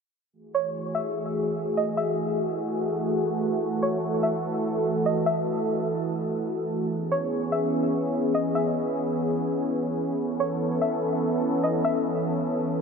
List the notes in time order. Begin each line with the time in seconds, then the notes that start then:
0.33 E3 A3 F#4 G#4
0.55 C#5
0.95 E5
1.77 D#5
1.97 E5
3.62 A4
3.82 C#5
4.23 E5
5.06 D#5
5.26 E5
6.91 B3 C#4 G#4
7.12 C#5
7.52 E5
8.35 D#5
8.55 E5
10.19 E3 B3 C#4 A4
10.40 C#5
10.81 E5
11.63 D#5
11.85 E5